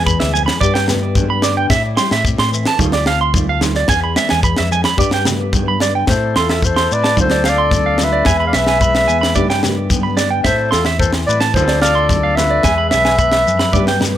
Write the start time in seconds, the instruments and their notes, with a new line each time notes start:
Already playing: fingered electric bass E2, nylon-string guitar E3 G#3 B3 G#4
0.06 nylon-string guitar E2, clean electric guitar B5, kick, shekere
0.20 fingered electric bass D2, clean electric guitar E5, snare
0.34 nylon-string guitar F2, clean electric guitar G#5, shekere
0.46 clean electric guitar B5, snare
0.61 fingered electric bass G2, nylon-string guitar G2 G4, clean electric guitar D5, kick, muted conga, shekere
0.74 clean electric guitar G5, snare
0.88 nylon-string guitar B3, snare, low conga, shekere
1.15 nylon-string guitar D4, kick, high conga, shekere
1.30 clean electric guitar B5
1.42 nylon-string guitar D3, clean electric guitar D5, snare, muted conga, shekere
1.57 clean electric guitar G5
1.70 fingered electric bass A2, nylon-string guitar A2 E4, clean electric guitar E5, kick, snare, muted conga, shekere
1.97 nylon-string guitar G3, clean electric guitar C6, snare, muted conga, shekere
2.11 fingered electric bass A2, nylon-string guitar A3, clean electric guitar E5, snare
2.25 nylon-string guitar C4, kick, shekere
2.38 fingered electric bass A2, clean electric guitar C6, snare
2.52 nylon-string guitar E3, shekere
2.65 clean electric guitar A5, snare
2.79 fingered electric bass D2, nylon-string guitar F4, muted nylon-string guitar stroke, kick, muted conga, high conga, shekere
2.92 clean electric guitar D5, snare
3.06 nylon-string guitar C4, clean electric guitar F5, snare
3.21 clean electric guitar C6
3.34 nylon-string guitar F4, kick, high conga, shekere
3.49 clean electric guitar F5
3.61 nylon-string guitar A3, snare, muted conga, high conga, shekere
3.75 clean electric guitar D5, snare
3.88 fingered electric bass E2, nylon-string guitar E2 G#4, clean electric guitar G#5, kick, snare, muted conga, shekere
4.04 clean electric guitar B5
4.16 nylon-string guitar G#3, clean electric guitar E5, snare, muted conga, shekere
4.29 fingered electric bass E2, clean electric guitar G#5, snare
4.43 nylon-string guitar E2, clean electric guitar B5, kick, shekere
4.57 fingered electric bass F2, clean electric guitar E5, snare
4.71 nylon-string guitar F2, clean electric guitar G#5, shekere
4.84 clean electric guitar B5, snare
4.97 nylon-string guitar G2 G4, fingered electric bass G2, clean electric guitar D5, kick, muted conga, shekere
5.11 clean electric guitar G5, snare
5.25 nylon-string guitar B3, snare, low conga, shekere
5.53 nylon-string guitar D4, kick, high conga, shekere
5.68 clean electric guitar B5
5.80 nylon-string guitar D3, clean electric guitar D5, snare, muted conga, shekere
5.95 clean electric guitar G5
6.07 fingered electric bass A2, nylon-string guitar A3 C4 E4, trumpet A4, clarinet C5, muted nylon-string guitar stroke, muted clean electric guitar stroke, kick, snare, muted conga, shekere
6.36 fingered electric bass E2, nylon-string guitar E4, trumpet F4, clarinet A4, clean electric guitar C6, snare
6.49 clean electric guitar E5, snare
6.62 nylon-string guitar A3, trumpet A4, clarinet C5, kick, shekere
6.76 clean electric guitar C6, snare
6.90 fingered electric bass A2, nylon-string guitar C4, clarinet D5, muted conga, shekere
6.95 trumpet B4
7.04 clean electric guitar A5, snare
7.17 fingered electric bass D2, nylon-string guitar D3 C4 F4, kick, muted conga, high conga, shekere
7.21 trumpet A4, clarinet C5
7.30 clean electric guitar D5, snare
7.44 nylon-string guitar F4, clean electric guitar F5, snare, muted conga, shekere
7.49 trumpet A4, clarinet D5
7.58 clean electric guitar C6
7.71 nylon-string guitar A3 C4, kick, snare, high conga, shekere
7.86 clean electric guitar F5
7.98 nylon-string guitar F4, snare, high conga, shekere
8.04 trumpet B4, clarinet E5
8.13 clean electric guitar D5
8.25 fingered electric bass E2, nylon-string guitar E2 G#3 B3 G#4, clean electric guitar G#5, kick, snare, muted conga, shekere
8.40 clean electric guitar B5
8.47 trumpet D5, clarinet F5
8.53 fingered electric bass B1, nylon-string guitar G#4, trumpet B4, clean electric guitar E5, clarinet E5, snare, shekere
8.67 clean electric guitar G#5, snare
8.81 nylon-string guitar E3 G#3, clean electric guitar B5, kick, shekere
8.95 clean electric guitar E5, snare
9.08 fingered electric bass E2, nylon-string guitar B3, clean electric guitar G#5, muted conga, shekere
9.21 clean electric guitar B5, snare
9.35 nylon-string guitar G2 B3 D4 G4, fingered electric bass G2, clean electric guitar D5, kick, muted conga, high conga, low conga, shekere
9.50 clean electric guitar G5, snare
9.63 nylon-string guitar G4, snare, muted conga, low conga, shekere
9.90 nylon-string guitar D3 B3, kick, high conga, shekere
10.03 clean electric guitar B5
10.17 nylon-string guitar D4, clean electric guitar D5, snare, shekere
10.31 clean electric guitar G5
10.44 fingered electric bass A2, nylon-string guitar A2, trumpet A4, clarinet C5, clean electric guitar E5, kick, snare, muted conga, shekere
10.48 nylon-string guitar A3 C4 E4
10.71 fingered electric bass E2, trumpet F4, clarinet A4, clean electric guitar C6, snare, shekere
10.75 nylon-string guitar E4
10.85 clean electric guitar E5, snare
10.99 nylon-string guitar E3 A3, trumpet A4, clarinet C5, kick, shekere
11.13 snare
11.27 fingered electric bass A2, trumpet B4, clarinet D5, muted conga, shekere
11.31 nylon-string guitar C4
11.40 clean electric guitar A5, snare
11.54 fingered electric bass D2, nylon-string guitar D3 C4, trumpet A4, clarinet C5, kick, muted conga, high conga, shekere
11.59 nylon-string guitar F4
11.68 clean electric guitar D5, snare
11.81 nylon-string guitar F4, trumpet A4, clarinet D5, clean electric guitar F5, snare, muted conga, shekere
11.95 clean electric guitar C6
12.09 nylon-string guitar A3 C4, kick, snare, high conga, shekere
12.23 clean electric guitar F5
12.36 nylon-string guitar F4, trumpet B4, clarinet E5, snare, high conga, shekere
12.51 clean electric guitar D5
12.63 fingered electric bass E2, nylon-string guitar E2 G#3 B3 G#4, clean electric guitar G#5, kick, snare, muted conga, shekere
12.78 clean electric guitar B5
12.89 fingered electric bass B1, trumpet B4, clarinet E5, clean electric guitar E5, snare, shekere
12.93 nylon-string guitar G#4
13.05 clean electric guitar G#5, snare
13.19 nylon-string guitar E2, clean electric guitar B5, kick, shekere
13.32 clean electric guitar E5, snare
13.47 nylon-string guitar F2, fingered electric bass F#2, muted conga, shekere
13.59 clean electric guitar B5, snare
13.73 fingered electric bass G2, nylon-string guitar G2 B3 D4 G4, clean electric guitar D5, kick, muted conga, high conga, low conga, shekere
13.87 clean electric guitar G5, snare
14.00 nylon-string guitar G4, snare, muted conga, low conga, shekere
14.13 high conga